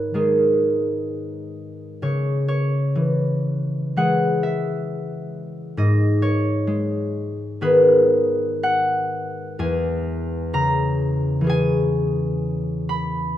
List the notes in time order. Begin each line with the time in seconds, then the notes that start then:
Already playing: G#2 D#3 B3 G#4 B4 D#5
0.14 D#3 G#3 G#4
2.02 C#3 C#5
2.48 C#5
2.95 E3
3.96 E3 G#3 G#4 F#5
4.43 E5
5.77 G#2 D#5
6.22 C#5
6.67 G#3
7.61 D#3 B3 G#4 B4
8.63 F#5
9.59 E2 G#5
10.53 C#3 A#5
11.41 E3 C#4
11.47 G#4 G#5
12.89 B5